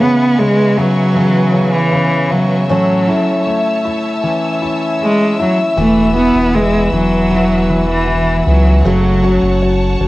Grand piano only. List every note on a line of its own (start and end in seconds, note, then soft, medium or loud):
0.00 0.39 C#3 medium
0.39 0.76 C#3 soft
0.77 1.14 C#3 soft
1.16 1.52 C#3 soft
1.54 1.91 C#3 soft
1.93 2.29 C#3 soft
2.31 2.68 C#3 soft
2.70 5.73 C#4 medium
3.08 3.84 E4 soft
3.47 4.96 A3 soft
3.85 4.61 E4 soft
4.24 5.73 E3 soft
4.62 5.38 E4 soft
5.39 5.76 E4 soft
5.78 6.14 E3 soft
6.16 6.53 E3 soft
6.55 6.92 E3 soft
6.94 7.30 E3 soft
7.31 7.68 E3 soft
7.69 8.06 E3 soft
8.07 8.44 E3 soft
8.46 8.83 E3 soft
8.85 9.22 F#3 medium
9.24 9.61 F#3 soft
9.62 10.00 F#3 soft
10.01 10.08 F#3 soft